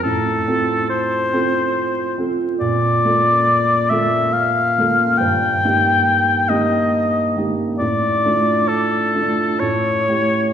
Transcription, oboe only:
X:1
M:3/4
L:1/8
Q:1/4=69
K:Dm
V:1 name="Oboe"
A2 c3 z | d3 e f2 | g3 _e2 z | d2 A2 ^c2 |]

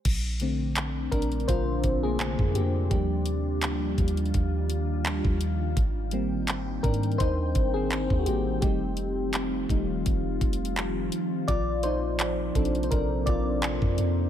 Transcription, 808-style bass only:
X:1
M:4/4
L:1/16
Q:"Swing 16ths" 1/4=84
K:Bb
V:1 name="808-style bass" clef=bass
B,,,6 B,,,2 B,,,2 B,,,3 F,, F,,2 | E,,4 D,, E,, E,,2 E,,4- E,, E,,3 | _A,,,6 _A,,2 E,,2 A,,,3 E,, A,,,2 | F,,,6 E,,,2 F,,,2 F,,,4 z2 |
B,,,6 B,,,2 B,,,2 B,,,3 F,, F,,2 |]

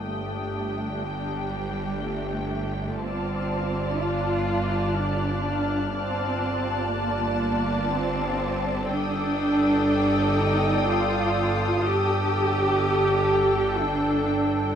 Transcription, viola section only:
X:1
M:3/4
L:1/8
Q:1/4=61
K:Dphr
V:1 name="Viola section"
[DG]6 | [Fd]6 | [Fd]6 | [Ad]6 |
[DA]6 |]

